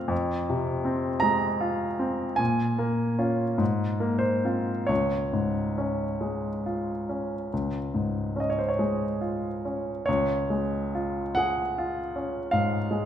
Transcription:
0, 0, Header, 1, 2, 480
1, 0, Start_track
1, 0, Key_signature, -5, "major"
1, 0, Tempo, 1115242
1, 49, Time_signature, 4, 2, 24, 8
1, 530, Tempo, 1183432
1, 1490, Tempo, 1304348
1, 2930, Tempo, 1282051
1, 4370, Tempo, 1147228
1, 5080, End_track
2, 0, Start_track
2, 0, Title_t, "Grand piano"
2, 0, Program_c, 0, 0
2, 0, Control_c, 0, 64, 127
2, 0, Note_on_c, 0, 48, 39
2, 0, Note_on_c, 0, 57, 40
2, 0, Note_on_c, 0, 60, 39
2, 0, Note_on_c, 0, 65, 42
2, 0, Note_on_c, 0, 77, 71
2, 35, Note_on_c, 0, 41, 58
2, 44, Note_off_c, 0, 77, 0
2, 51, Note_off_c, 0, 60, 0
2, 56, Control_c, 0, 64, 0
2, 58, Note_off_c, 0, 57, 0
2, 59, Note_off_c, 0, 48, 0
2, 59, Note_off_c, 0, 65, 0
2, 126, Control_c, 0, 64, 127
2, 213, Note_on_c, 0, 48, 45
2, 365, Note_on_c, 0, 60, 45
2, 468, Note_off_c, 0, 48, 0
2, 515, Note_on_c, 0, 82, 77
2, 527, Note_on_c, 0, 56, 44
2, 623, Note_off_c, 0, 60, 0
2, 682, Note_on_c, 0, 65, 46
2, 780, Note_off_c, 0, 56, 0
2, 839, Note_on_c, 0, 60, 44
2, 937, Note_off_c, 0, 65, 0
2, 980, Note_off_c, 0, 41, 0
2, 988, Note_on_c, 0, 80, 70
2, 996, Note_off_c, 0, 82, 0
2, 998, Note_on_c, 0, 46, 50
2, 1000, Note_off_c, 0, 60, 0
2, 1010, Control_c, 0, 64, 0
2, 1074, Control_c, 0, 64, 127
2, 1160, Note_on_c, 0, 58, 47
2, 1323, Note_on_c, 0, 61, 39
2, 1324, Note_on_c, 0, 65, 43
2, 1423, Note_off_c, 0, 58, 0
2, 1474, Note_off_c, 0, 46, 0
2, 1474, Note_off_c, 0, 61, 0
2, 1474, Note_off_c, 0, 65, 0
2, 1483, Note_on_c, 0, 44, 53
2, 1498, Control_c, 0, 64, 0
2, 1571, Control_c, 0, 64, 127
2, 1638, Note_on_c, 0, 58, 42
2, 1706, Note_on_c, 0, 72, 54
2, 1717, Note_off_c, 0, 80, 0
2, 1802, Note_on_c, 0, 60, 33
2, 1805, Note_on_c, 0, 65, 37
2, 1898, Note_off_c, 0, 58, 0
2, 1950, Note_off_c, 0, 44, 0
2, 1952, Note_off_c, 0, 60, 0
2, 1953, Note_off_c, 0, 65, 0
2, 1956, Note_on_c, 0, 73, 58
2, 1959, Note_off_c, 0, 72, 0
2, 1964, Note_on_c, 0, 37, 44
2, 1976, Control_c, 0, 64, 0
2, 2034, Control_c, 0, 64, 127
2, 2128, Note_on_c, 0, 44, 35
2, 2292, Note_on_c, 0, 61, 36
2, 2389, Note_off_c, 0, 44, 0
2, 2451, Note_on_c, 0, 56, 34
2, 2549, Note_off_c, 0, 61, 0
2, 2617, Note_on_c, 0, 65, 36
2, 2708, Note_off_c, 0, 56, 0
2, 2775, Note_on_c, 0, 61, 33
2, 2870, Note_off_c, 0, 65, 0
2, 2915, Note_off_c, 0, 37, 0
2, 2938, Note_on_c, 0, 37, 40
2, 2939, Control_c, 0, 64, 0
2, 2996, Control_c, 0, 64, 127
2, 3027, Note_off_c, 0, 61, 0
2, 3092, Note_on_c, 0, 44, 35
2, 3249, Note_on_c, 0, 61, 33
2, 3254, Note_off_c, 0, 73, 0
2, 3263, Note_on_c, 0, 75, 44
2, 3297, Note_off_c, 0, 75, 0
2, 3299, Note_on_c, 0, 73, 41
2, 3332, Note_on_c, 0, 72, 42
2, 3333, Note_off_c, 0, 73, 0
2, 3342, Note_off_c, 0, 44, 0
2, 3368, Note_off_c, 0, 72, 0
2, 3369, Note_on_c, 0, 73, 44
2, 3404, Note_off_c, 0, 73, 0
2, 3409, Note_on_c, 0, 56, 35
2, 3501, Note_off_c, 0, 61, 0
2, 3567, Note_on_c, 0, 65, 33
2, 3667, Note_off_c, 0, 56, 0
2, 3731, Note_on_c, 0, 61, 31
2, 3828, Note_off_c, 0, 65, 0
2, 3878, Note_off_c, 0, 37, 0
2, 3883, Note_on_c, 0, 73, 69
2, 3890, Note_off_c, 0, 61, 0
2, 3893, Note_on_c, 0, 37, 47
2, 3895, Control_c, 0, 64, 0
2, 3951, Control_c, 0, 64, 127
2, 4050, Note_on_c, 0, 56, 35
2, 4217, Note_on_c, 0, 65, 40
2, 4311, Note_off_c, 0, 56, 0
2, 4366, Note_on_c, 0, 78, 75
2, 4369, Note_off_c, 0, 73, 0
2, 4376, Note_on_c, 0, 68, 41
2, 4475, Note_off_c, 0, 65, 0
2, 4548, Note_on_c, 0, 65, 42
2, 4637, Note_off_c, 0, 68, 0
2, 4705, Note_on_c, 0, 61, 35
2, 4798, Note_off_c, 0, 65, 0
2, 4843, Note_off_c, 0, 37, 0
2, 4853, Note_on_c, 0, 77, 62
2, 4854, Note_off_c, 0, 78, 0
2, 4861, Note_on_c, 0, 44, 41
2, 4955, Note_off_c, 0, 61, 0
2, 5018, Note_on_c, 0, 56, 42
2, 5080, Note_off_c, 0, 44, 0
2, 5080, Note_off_c, 0, 56, 0
2, 5080, Note_off_c, 0, 77, 0
2, 5080, End_track
0, 0, End_of_file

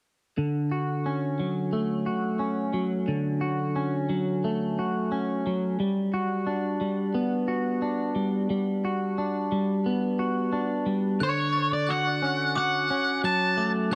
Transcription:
0, 0, Header, 1, 4, 480
1, 0, Start_track
1, 0, Tempo, 677201
1, 262, Time_signature, 4, 2, 24, 8
1, 9888, End_track
2, 0, Start_track
2, 0, Title_t, "Glockenspiel"
2, 0, Program_c, 0, 9
2, 7941, Note_on_c, 0, 90, 46
2, 8171, Note_on_c, 0, 93, 35
2, 8182, Note_off_c, 0, 90, 0
2, 8410, Note_on_c, 0, 90, 37
2, 8416, Note_off_c, 0, 93, 0
2, 8895, Note_off_c, 0, 90, 0
2, 8899, Note_on_c, 0, 86, 49
2, 9378, Note_off_c, 0, 86, 0
2, 9386, Note_on_c, 0, 90, 46
2, 9621, Note_off_c, 0, 90, 0
2, 9624, Note_on_c, 0, 86, 38
2, 9859, Note_off_c, 0, 86, 0
2, 9863, Note_on_c, 0, 90, 48
2, 9888, Note_off_c, 0, 90, 0
2, 9888, End_track
3, 0, Start_track
3, 0, Title_t, "Lead electric guitar"
3, 0, Program_c, 1, 29
3, 7962, Note_on_c, 1, 73, 42
3, 8313, Note_off_c, 1, 73, 0
3, 8316, Note_on_c, 1, 74, 43
3, 8432, Note_off_c, 1, 74, 0
3, 8437, Note_on_c, 1, 78, 49
3, 8905, Note_off_c, 1, 78, 0
3, 8914, Note_on_c, 1, 78, 46
3, 9357, Note_off_c, 1, 78, 0
3, 9391, Note_on_c, 1, 81, 40
3, 9718, Note_off_c, 1, 81, 0
3, 9888, End_track
4, 0, Start_track
4, 0, Title_t, "Clean electric guitar"
4, 0, Program_c, 2, 27
4, 268, Note_on_c, 2, 50, 32
4, 507, Note_on_c, 2, 66, 29
4, 750, Note_on_c, 2, 61, 29
4, 989, Note_on_c, 2, 54, 26
4, 1224, Note_on_c, 2, 57, 30
4, 1460, Note_off_c, 2, 66, 0
4, 1462, Note_on_c, 2, 66, 30
4, 1468, Note_off_c, 2, 50, 0
4, 1688, Note_off_c, 2, 61, 0
4, 1696, Note_on_c, 2, 61, 30
4, 1936, Note_off_c, 2, 54, 0
4, 1939, Note_on_c, 2, 54, 29
4, 2183, Note_on_c, 2, 50, 38
4, 2415, Note_off_c, 2, 66, 0
4, 2418, Note_on_c, 2, 66, 35
4, 2427, Note_off_c, 2, 57, 0
4, 2655, Note_off_c, 2, 61, 0
4, 2663, Note_on_c, 2, 61, 30
4, 2900, Note_off_c, 2, 54, 0
4, 2902, Note_on_c, 2, 54, 32
4, 3150, Note_on_c, 2, 57, 31
4, 3386, Note_off_c, 2, 50, 0
4, 3392, Note_off_c, 2, 66, 0
4, 3394, Note_on_c, 2, 66, 34
4, 3619, Note_off_c, 2, 61, 0
4, 3627, Note_on_c, 2, 61, 34
4, 3871, Note_off_c, 2, 54, 0
4, 3874, Note_on_c, 2, 54, 33
4, 4107, Note_off_c, 2, 54, 0
4, 4108, Note_off_c, 2, 61, 0
4, 4109, Note_off_c, 2, 57, 0
4, 4109, Note_on_c, 2, 55, 36
4, 4131, Note_off_c, 2, 66, 0
4, 4350, Note_on_c, 2, 66, 39
4, 4583, Note_on_c, 2, 62, 35
4, 4818, Note_off_c, 2, 55, 0
4, 4826, Note_on_c, 2, 55, 34
4, 5064, Note_on_c, 2, 59, 37
4, 5298, Note_off_c, 2, 66, 0
4, 5301, Note_on_c, 2, 66, 39
4, 5540, Note_off_c, 2, 62, 0
4, 5543, Note_on_c, 2, 62, 29
4, 5772, Note_off_c, 2, 55, 0
4, 5780, Note_on_c, 2, 55, 32
4, 6017, Note_off_c, 2, 55, 0
4, 6025, Note_on_c, 2, 55, 38
4, 6262, Note_off_c, 2, 66, 0
4, 6266, Note_off_c, 2, 59, 0
4, 6270, Note_on_c, 2, 66, 35
4, 6499, Note_off_c, 2, 62, 0
4, 6508, Note_on_c, 2, 62, 30
4, 6739, Note_off_c, 2, 55, 0
4, 6747, Note_on_c, 2, 55, 31
4, 6989, Note_on_c, 2, 59, 34
4, 7215, Note_off_c, 2, 66, 0
4, 7224, Note_on_c, 2, 66, 39
4, 7452, Note_off_c, 2, 62, 0
4, 7460, Note_on_c, 2, 62, 34
4, 7690, Note_off_c, 2, 55, 0
4, 7699, Note_on_c, 2, 55, 33
4, 7941, Note_off_c, 2, 55, 0
4, 7942, Note_off_c, 2, 62, 0
4, 7943, Note_off_c, 2, 66, 0
4, 7944, Note_on_c, 2, 50, 39
4, 7945, Note_off_c, 2, 59, 0
4, 8426, Note_on_c, 2, 66, 37
4, 8664, Note_on_c, 2, 61, 36
4, 8899, Note_off_c, 2, 66, 0
4, 8902, Note_on_c, 2, 66, 46
4, 9138, Note_off_c, 2, 61, 0
4, 9140, Note_off_c, 2, 50, 0
4, 9147, Note_on_c, 2, 61, 35
4, 9382, Note_on_c, 2, 54, 38
4, 9620, Note_on_c, 2, 57, 38
4, 9862, Note_on_c, 2, 50, 42
4, 9888, Note_off_c, 2, 50, 0
4, 9888, Note_off_c, 2, 54, 0
4, 9888, Note_off_c, 2, 57, 0
4, 9888, Note_off_c, 2, 61, 0
4, 9888, Note_off_c, 2, 66, 0
4, 9888, End_track
0, 0, End_of_file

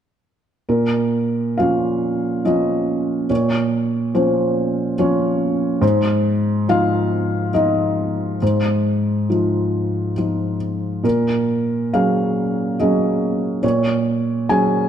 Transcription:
0, 0, Header, 1, 2, 480
1, 0, Start_track
1, 0, Key_signature, -5, "minor"
1, 0, Tempo, 881057
1, 372, Time_signature, 3, 2, 24, 8
1, 1334, Tempo, 848656
1, 4214, Tempo, 879765
1, 6614, Tempo, 854701
1, 8269, End_track
2, 0, Start_track
2, 0, Title_t, "Felt piano"
2, 0, Program_c, 0, 0
2, 374, Note_on_c, 0, 46, 37
2, 374, Note_on_c, 0, 70, 40
2, 459, Control_c, 0, 64, 127
2, 841, Note_off_c, 0, 70, 0
2, 848, Note_off_c, 0, 46, 0
2, 858, Note_on_c, 0, 77, 50
2, 866, Note_on_c, 0, 53, 23
2, 868, Note_on_c, 0, 61, 26
2, 870, Note_on_c, 0, 65, 29
2, 1310, Note_off_c, 0, 77, 0
2, 1314, Note_off_c, 0, 53, 0
2, 1315, Note_off_c, 0, 61, 0
2, 1316, Note_off_c, 0, 65, 0
2, 1333, Note_on_c, 0, 53, 25
2, 1335, Note_on_c, 0, 61, 26
2, 1335, Note_on_c, 0, 75, 47
2, 1337, Note_on_c, 0, 65, 28
2, 1791, Note_off_c, 0, 53, 0
2, 1792, Note_off_c, 0, 61, 0
2, 1792, Note_off_c, 0, 75, 0
2, 1793, Note_off_c, 0, 65, 0
2, 1814, Note_on_c, 0, 46, 40
2, 1814, Note_on_c, 0, 73, 44
2, 1824, Control_c, 0, 64, 0
2, 1913, Control_c, 0, 64, 127
2, 2270, Note_off_c, 0, 73, 0
2, 2278, Note_off_c, 0, 46, 0
2, 2292, Note_on_c, 0, 53, 28
2, 2294, Note_on_c, 0, 61, 30
2, 2294, Note_on_c, 0, 72, 51
2, 2297, Note_on_c, 0, 65, 32
2, 2743, Note_off_c, 0, 53, 0
2, 2744, Note_off_c, 0, 61, 0
2, 2744, Note_off_c, 0, 72, 0
2, 2746, Note_off_c, 0, 65, 0
2, 2766, Note_on_c, 0, 53, 35
2, 2771, Note_on_c, 0, 61, 36
2, 2773, Note_on_c, 0, 65, 36
2, 2773, Note_on_c, 0, 73, 52
2, 3218, Note_off_c, 0, 53, 0
2, 3221, Note_off_c, 0, 61, 0
2, 3222, Note_off_c, 0, 65, 0
2, 3222, Note_off_c, 0, 73, 0
2, 3237, Note_on_c, 0, 44, 53
2, 3238, Note_on_c, 0, 72, 58
2, 3251, Control_c, 0, 64, 0
2, 3339, Control_c, 0, 64, 127
2, 3706, Note_off_c, 0, 72, 0
2, 3714, Note_off_c, 0, 44, 0
2, 3730, Note_on_c, 0, 53, 34
2, 3730, Note_on_c, 0, 63, 35
2, 3733, Note_on_c, 0, 65, 38
2, 3735, Note_on_c, 0, 77, 77
2, 4189, Note_off_c, 0, 53, 0
2, 4189, Note_off_c, 0, 63, 0
2, 4191, Note_off_c, 0, 65, 0
2, 4192, Note_off_c, 0, 77, 0
2, 4212, Note_on_c, 0, 53, 32
2, 4213, Note_on_c, 0, 75, 52
2, 4214, Note_on_c, 0, 63, 36
2, 4219, Note_on_c, 0, 65, 35
2, 4667, Note_off_c, 0, 53, 0
2, 4667, Note_off_c, 0, 75, 0
2, 4668, Note_off_c, 0, 63, 0
2, 4670, Note_off_c, 0, 65, 0
2, 4695, Note_on_c, 0, 44, 37
2, 4695, Note_on_c, 0, 72, 40
2, 4700, Control_c, 0, 64, 0
2, 4782, Control_c, 0, 64, 127
2, 5157, Note_off_c, 0, 44, 0
2, 5170, Note_on_c, 0, 53, 23
2, 5173, Note_on_c, 0, 65, 26
2, 5174, Note_on_c, 0, 63, 21
2, 5624, Note_off_c, 0, 53, 0
2, 5626, Note_off_c, 0, 63, 0
2, 5626, Note_off_c, 0, 65, 0
2, 5649, Note_on_c, 0, 53, 21
2, 5651, Note_on_c, 0, 63, 24
2, 5654, Note_on_c, 0, 65, 25
2, 5863, Note_off_c, 0, 72, 0
2, 6101, Note_off_c, 0, 53, 0
2, 6102, Note_off_c, 0, 63, 0
2, 6104, Note_off_c, 0, 65, 0
2, 6120, Note_on_c, 0, 46, 36
2, 6126, Note_on_c, 0, 70, 50
2, 6132, Control_c, 0, 64, 0
2, 6242, Control_c, 0, 64, 127
2, 6592, Note_off_c, 0, 70, 0
2, 6596, Note_off_c, 0, 46, 0
2, 6612, Note_on_c, 0, 54, 28
2, 6612, Note_on_c, 0, 77, 54
2, 6614, Note_on_c, 0, 61, 28
2, 6615, Note_on_c, 0, 68, 29
2, 7072, Note_off_c, 0, 54, 0
2, 7072, Note_off_c, 0, 77, 0
2, 7073, Note_off_c, 0, 61, 0
2, 7074, Note_off_c, 0, 68, 0
2, 7095, Note_on_c, 0, 75, 42
2, 7099, Note_on_c, 0, 54, 30
2, 7099, Note_on_c, 0, 61, 29
2, 7105, Note_on_c, 0, 68, 34
2, 7541, Note_off_c, 0, 75, 0
2, 7543, Note_off_c, 0, 54, 0
2, 7543, Note_off_c, 0, 61, 0
2, 7546, Note_off_c, 0, 68, 0
2, 7563, Note_on_c, 0, 73, 57
2, 7565, Note_on_c, 0, 46, 43
2, 7572, Control_c, 0, 64, 0
2, 7666, Control_c, 0, 64, 127
2, 8028, Note_off_c, 0, 73, 0
2, 8036, Note_off_c, 0, 46, 0
2, 8047, Note_on_c, 0, 54, 33
2, 8049, Note_on_c, 0, 61, 34
2, 8049, Note_on_c, 0, 80, 69
2, 8052, Note_on_c, 0, 68, 36
2, 8269, Note_off_c, 0, 54, 0
2, 8269, Note_off_c, 0, 61, 0
2, 8269, Note_off_c, 0, 68, 0
2, 8269, Note_off_c, 0, 80, 0
2, 8269, End_track
0, 0, End_of_file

